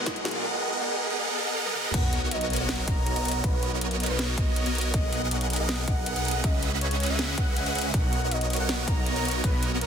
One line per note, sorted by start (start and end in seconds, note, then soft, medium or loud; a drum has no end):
0.00 0.23 B2 medium
0.00 0.40 B2 medium
0.00 0.24 F#3 medium
0.00 0.25 G#3 medium
0.00 0.42 G#3 medium
0.00 0.26 A#3 medium
0.00 0.32 B3 loud
0.00 0.46 D#4 loud
0.00 0.42 F#4 medium
0.00 0.27 G#4 medium
0.00 0.32 G#4 medium
0.00 0.32 A#4 medium
0.00 0.42 A#4 medium
0.00 0.32 D#5 medium
0.00 0.42 D#5 medium
0.00 0.32 F#5 loud
0.00 riser medium
0.06 kick loud
0.06 snare medium
0.06 closed hi-hat medium
0.16 closed hi-hat medium
0.23 0.41 B2 medium
0.23 0.42 F#3 medium
0.23 0.42 G#3 medium
0.23 0.43 A#3 medium
0.23 snare medium
0.23 closed hi-hat soft
0.27 0.43 G#4 medium
0.27 closed hi-hat medium
0.31 0.42 B3 medium
0.31 0.42 G#4 medium
0.31 0.42 A#4 medium
0.31 0.42 D#5 medium
0.31 0.42 F#5 loud
0.31 closed hi-hat medium
0.44 0.70 B3 loud
0.44 0.70 G#4 medium
0.44 0.70 A#4 medium
0.44 0.70 D#5 medium
0.44 0.70 F#5 loud
0.72 0.80 B3 medium
0.72 0.80 G#4 medium
0.72 0.80 A#4 medium
0.72 0.80 D#5 medium
0.72 0.80 F#5 loud
0.81 1.07 B3 medium
0.81 1.07 G#4 medium
0.81 1.08 A#4 medium
0.81 1.08 D#5 medium
0.81 1.08 F#5 loud
1.10 1.17 B3 loud
1.10 1.17 G#4 medium
1.10 1.17 A#4 medium
1.10 1.17 D#5 medium
1.10 1.17 F#5 loud
1.19 1.36 B3 loud
1.19 1.36 G#4 loud
1.19 1.36 A#4 medium
1.19 1.36 D#5 medium
1.19 1.36 F#5 loud
1.38 1.55 B3 loud
1.38 1.55 G#4 medium
1.38 1.55 A#4 medium
1.38 1.55 D#5 medium
1.38 1.55 F#5 loud
1.56 1.74 B3 loud
1.56 1.74 G#4 medium
1.56 1.74 A#4 medium
1.56 1.74 D#5 medium
1.56 1.74 F#5 loud
1.66 high tom medium
1.75 1.92 B3 loud
1.75 1.92 G#4 medium
1.75 1.92 A#4 medium
1.75 1.92 D#5 medium
1.75 1.92 F#5 loud
1.75 mid tom medium
1.85 mid tom medium
1.94 2.20 B1 loud
1.94 2.20 B3 loud
1.94 2.20 F#4 medium
1.94 2.33 F#5 loud
1.94 kick loud
1.94 closed hi-hat medium
1.94 crash loud
1.94 sub drop medium
2.13 closed hi-hat medium
2.22 2.58 B1 loud
2.22 2.58 B3 loud
2.22 2.58 F#4 medium
2.22 2.58 A#4 medium
2.22 2.58 C#5 medium
2.22 2.58 D#5 loud
2.31 2.46 D#5 medium
2.31 closed hi-hat medium
2.41 closed hi-hat medium
2.50 closed hi-hat soft
2.53 closed hi-hat medium
2.56 2.86 B1 loud
2.56 2.85 B3 medium
2.56 2.85 F#4 medium
2.56 2.85 A#4 medium
2.56 2.85 C#5 medium
2.56 2.85 D#5 loud
2.56 2.75 F#5 medium
2.56 closed hi-hat medium
2.69 snare loud
2.69 closed hi-hat medium
2.88 3.14 B1 loud
2.88 3.14 B3 medium
2.88 3.14 F#4 medium
2.88 3.14 C#5 medium
2.88 3.37 A#5 loud
2.88 kick loud
2.88 closed hi-hat medium
3.06 closed hi-hat medium
3.16 3.42 B1 loud
3.16 3.42 B3 medium
3.16 3.42 F#4 medium
3.16 3.42 A#4 medium
3.16 3.42 C#5 medium
3.16 3.42 D#5 loud
3.16 closed hi-hat medium
3.25 closed hi-hat medium
3.28 closed hi-hat medium
3.31 closed hi-hat medium
3.44 3.70 B1 loud
3.44 3.70 B3 loud
3.44 3.70 A#4 medium
3.44 3.83 B4 loud
3.44 3.70 C#5 medium
3.44 3.70 D#5 loud
3.44 kick loud
3.44 closed hi-hat medium
3.63 closed hi-hat medium
3.72 4.08 B1 loud
3.72 4.08 B3 medium
3.72 4.08 F#4 medium
3.72 4.08 A#4 medium
3.72 4.08 C#5 medium
3.72 4.08 D#5 loud
3.81 3.96 A#4 medium
3.81 closed hi-hat medium
3.91 closed hi-hat medium
4.00 closed hi-hat medium
4.03 closed hi-hat medium
4.06 4.36 B1 loud
4.06 4.35 B3 medium
4.06 4.35 F#4 medium
4.06 4.35 A#4 medium
4.06 4.24 B4 medium
4.06 4.35 C#5 medium
4.06 4.35 D#5 loud
4.06 closed hi-hat medium
4.19 snare loud
4.19 closed hi-hat medium
4.38 4.64 B1 loud
4.38 4.87 D#5 loud
4.38 kick loud
4.38 closed hi-hat medium
4.56 closed hi-hat medium
4.66 4.92 B1 loud
4.66 4.92 B3 medium
4.66 4.92 F#4 medium
4.66 4.92 A#4 medium
4.66 4.92 C#5 medium
4.66 4.92 D#5 loud
4.66 closed hi-hat medium
4.75 closed hi-hat medium
4.78 closed hi-hat medium
4.81 closed hi-hat medium
4.94 5.20 B1 loud
4.94 5.20 B3 loud
4.94 5.20 G#4 medium
4.94 5.20 A#4 medium
4.94 5.33 D#5 loud
4.94 5.20 D#5 medium
4.94 5.20 F#5 loud
4.94 kick loud
4.94 closed hi-hat medium
5.13 closed hi-hat medium
5.22 5.58 B1 loud
5.22 5.58 B3 loud
5.22 5.58 G#4 medium
5.22 5.58 A#4 medium
5.22 5.58 D#5 medium
5.22 5.58 F#5 loud
5.31 5.46 C#5 medium
5.31 closed hi-hat medium
5.41 closed hi-hat medium
5.50 closed hi-hat soft
5.53 closed hi-hat medium
5.56 5.86 B1 loud
5.56 5.85 B3 medium
5.56 5.85 G#4 medium
5.56 5.85 A#4 medium
5.56 5.85 D#5 medium
5.56 5.74 D#5 loud
5.56 5.85 F#5 loud
5.56 closed hi-hat medium
5.69 snare loud
5.69 closed hi-hat medium
5.88 6.14 B1 loud
5.88 6.14 B3 medium
5.88 6.14 G#4 medium
5.88 6.14 A#4 medium
5.88 6.14 D#5 medium
5.88 6.14 F#5 loud
5.88 6.45 F#5 loud
5.88 kick loud
5.88 closed hi-hat medium
6.06 closed hi-hat medium
6.16 6.42 B1 loud
6.16 6.42 B3 medium
6.16 6.42 G#4 medium
6.16 6.42 A#4 medium
6.16 6.42 D#5 medium
6.16 6.42 F#5 loud
6.16 closed hi-hat medium
6.25 closed hi-hat soft
6.28 closed hi-hat medium
6.31 closed hi-hat medium
6.44 6.70 C#2 loud
6.44 6.70 C#4 loud
6.44 6.70 G#4 medium
6.44 6.70 B4 medium
6.44 6.70 D#5 medium
6.44 6.64 D#5 loud
6.44 6.70 E5 medium
6.44 6.70 F#5 loud
6.44 kick loud
6.44 closed hi-hat medium
6.63 closed hi-hat medium
6.72 7.08 C#2 loud
6.72 7.08 C#4 medium
6.72 7.08 G#4 medium
6.72 7.08 B4 medium
6.72 7.08 D#5 medium
6.72 7.08 E5 medium
6.72 7.08 F#5 loud
6.81 7.11 C#5 medium
6.81 closed hi-hat medium
6.91 closed hi-hat medium
7.00 closed hi-hat soft
7.03 closed hi-hat medium
7.06 7.36 C#2 loud
7.06 7.36 C#4 loud
7.06 7.35 G#4 medium
7.06 7.36 B4 medium
7.06 7.36 D#5 medium
7.06 7.24 E5 medium
7.06 7.35 E5 medium
7.06 7.36 F#5 loud
7.06 closed hi-hat medium
7.19 snare loud
7.19 closed hi-hat medium
7.38 7.64 C#2 loud
7.38 7.64 C#4 medium
7.38 7.64 B4 medium
7.38 7.87 F#5 loud
7.38 7.64 F#5 loud
7.38 kick loud
7.38 closed hi-hat medium
7.56 closed hi-hat medium
7.66 7.73 C#2 medium
7.66 7.73 C#4 medium
7.66 7.73 G#4 medium
7.66 7.73 B4 medium
7.66 7.73 D#5 medium
7.66 7.73 E5 medium
7.66 7.73 F#5 medium
7.66 closed hi-hat medium
7.75 7.92 C#2 loud
7.75 7.92 C#4 medium
7.75 7.92 G#4 medium
7.75 7.92 B4 medium
7.75 7.92 D#5 medium
7.75 7.92 E5 medium
7.75 7.92 F#5 loud
7.75 closed hi-hat soft
7.79 closed hi-hat medium
7.82 closed hi-hat medium
7.94 8.20 B1 loud
7.94 8.20 B3 loud
7.94 8.20 F#4 medium
7.94 8.20 A#4 medium
7.94 8.20 D#5 loud
7.94 8.33 F#5 loud
7.94 kick loud
7.94 closed hi-hat medium
8.13 closed hi-hat medium
8.22 8.58 B1 loud
8.22 8.58 B3 medium
8.22 8.58 F#4 medium
8.22 8.58 A#4 medium
8.22 8.58 C#5 medium
8.22 8.58 D#5 loud
8.31 8.46 D#5 medium
8.31 closed hi-hat medium
8.41 closed hi-hat medium
8.50 closed hi-hat soft
8.53 closed hi-hat medium
8.56 8.86 B1 loud
8.56 8.85 B3 loud
8.56 8.85 F#4 medium
8.56 8.85 A#4 medium
8.56 8.85 C#5 medium
8.56 8.85 D#5 loud
8.56 8.74 F#5 loud
8.56 closed hi-hat medium
8.69 snare loud
8.69 closed hi-hat medium
8.87 9.14 B1 loud
8.87 9.14 B3 medium
8.87 9.14 F#4 medium
8.87 9.14 A#4 medium
8.87 9.14 C#5 medium
8.87 9.14 D#5 loud
8.87 9.37 A#5 medium
8.87 kick loud
8.87 closed hi-hat medium
9.06 closed hi-hat medium
9.16 9.42 B1 loud
9.16 9.42 B3 medium
9.16 9.42 F#4 medium
9.16 9.42 A#4 medium
9.16 9.42 C#5 medium
9.16 9.42 D#5 loud
9.16 closed hi-hat medium
9.25 closed hi-hat medium
9.28 closed hi-hat medium
9.31 closed hi-hat medium
9.44 9.70 B1 loud
9.44 9.70 B3 loud
9.44 9.70 F#4 medium
9.44 9.64 B4 loud
9.44 9.70 C#5 medium
9.44 kick loud
9.44 closed hi-hat medium
9.63 closed hi-hat medium
9.72 9.86 B1 loud
9.72 9.86 B3 loud
9.72 9.86 F#4 medium
9.72 9.86 A#4 medium
9.72 9.86 C#5 medium
9.72 9.86 D#5 loud
9.81 9.86 A#4 medium
9.81 closed hi-hat medium